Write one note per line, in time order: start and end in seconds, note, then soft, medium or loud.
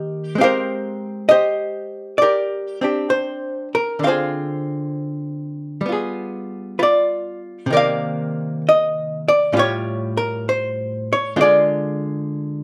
0.00 0.35 D#3 soft
0.00 0.35 A#3 soft
0.00 0.36 G4 medium
0.00 0.36 A#4 soft
0.00 0.40 D#5 medium
0.35 4.01 G#3 soft
0.35 1.30 C4 medium
0.40 1.28 G4 medium
0.40 2.18 A#4 medium
0.40 1.30 C5 medium
0.40 1.33 F5 medium
1.29 2.21 G4 medium
1.29 2.22 C5 medium
1.29 2.15 D#5 medium
2.18 2.81 G4 medium
2.18 2.84 D5 medium
2.23 2.82 A#4 medium
2.81 4.02 C4 soft
2.81 4.03 D4 soft
2.81 3.10 G4 soft
3.10 3.68 C5 medium
3.75 4.04 A#4 medium
3.99 5.84 D3 soft
4.03 5.85 C4 soft
4.03 5.83 C5 medium
4.03 5.82 F5 medium
4.08 5.88 F4 soft
4.08 5.84 G#4 soft
5.81 7.67 G3 soft
5.86 7.70 B3 soft
5.86 6.78 F4 soft
5.92 6.79 G#4 soft
6.79 7.67 F4 medium
6.79 6.82 B4 soft
6.79 7.72 D5 medium
7.66 9.52 C3 soft
7.70 9.53 D#3 soft
7.70 9.53 A#3 soft
7.70 9.51 A#4 medium
7.70 9.27 D5 medium
7.77 8.61 F5 medium
8.69 9.28 D#5 medium
9.28 9.57 D5 medium
9.53 11.36 A2 soft
9.53 11.36 G3 soft
9.53 9.56 C#4 soft
9.53 9.55 F4 soft
9.57 11.34 F4 medium
9.57 11.35 G4 medium
9.57 10.17 C#5 medium
10.17 10.47 A#4 medium
10.49 11.11 C5 medium
11.13 11.38 C#5 medium
11.36 12.63 D3 soft
11.36 12.63 G#3 soft
11.36 11.42 C4 soft
11.36 11.41 F4 soft
11.41 12.63 F4 soft
11.41 12.63 G#4 soft
11.41 12.63 D5 medium